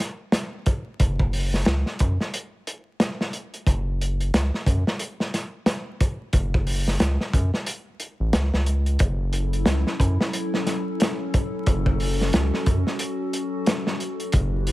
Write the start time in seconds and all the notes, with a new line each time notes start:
0.00 snare, closed hi-hat
0.32 snare, closed hi-hat
0.66 kick, closed hi-hat
1.00 F#1, kick, closed hi-hat
1.19 kick
1.33 open hi-hat
1.54 snare
1.65 C#2, snare, closed hi-hat
1.86 snare
1.99 F#2, kick, closed hi-hat
2.20 snare
2.34 closed hi-hat
2.67 closed hi-hat
3.00 snare, closed hi-hat
3.21 snare
3.33 closed hi-hat
3.54 closed hi-hat
3.67 F#1, kick, closed hi-hat
4.01 closed hi-hat
4.20 closed hi-hat
4.34 C#2, snare, closed hi-hat
4.54 snare
4.66 F#2, kick, closed hi-hat
4.87 snare
4.99 closed hi-hat
5.20 snare
5.34 snare, closed hi-hat
5.66 snare, closed hi-hat
6.00 kick, closed hi-hat
6.33 F#1, kick, closed hi-hat
6.54 kick
6.67 open hi-hat
6.88 snare
7.00 C#2, snare, closed hi-hat
7.20 snare
7.33 F#2, kick, closed hi-hat
7.54 snare
7.66 closed hi-hat
8.00 closed hi-hat
8.20 A1
8.33 C#2, snare, closed hi-hat
8.54 C#2, snare
8.66 closed hi-hat
8.86 closed hi-hat
8.99 F#1 F#3 C#4 E4 A4, kick, closed hi-hat
9.33 closed hi-hat
9.53 closed hi-hat
9.66 C#2, snare, closed hi-hat
9.87 snare
10.00 F#2, kick, closed hi-hat
10.20 snare
10.33 closed hi-hat
10.54 snare
10.66 snare, closed hi-hat
11.00 snare, closed hi-hat
11.34 kick, closed hi-hat
11.66 F#1 F#4, kick, closed hi-hat
11.86 kick
12.00 open hi-hat
12.21 snare
12.33 C#2, snare, closed hi-hat
12.54 snare
12.66 F#2, kick, closed hi-hat
12.87 snare
12.99 closed hi-hat
13.33 closed hi-hat
13.66 snare, closed hi-hat
13.87 snare
14.00 closed hi-hat
14.20 closed hi-hat
14.32 F#1 E4 F#4 G4 B4, kick, closed hi-hat
14.67 closed hi-hat